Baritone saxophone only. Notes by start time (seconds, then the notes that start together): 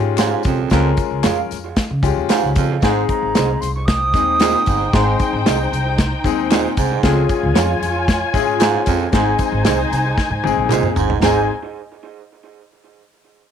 0.18 G#2
0.45 F2
0.71 F2
2.30 G#2
2.56 F2
2.83 G#2
4.41 A#2
4.67 G#2
4.93 G#2
6.51 A#2
6.78 G#2
7.04 F2
8.61 G#2
8.87 F2
9.14 G#2
10.71 A#2
10.97 G#2
11.24 G#2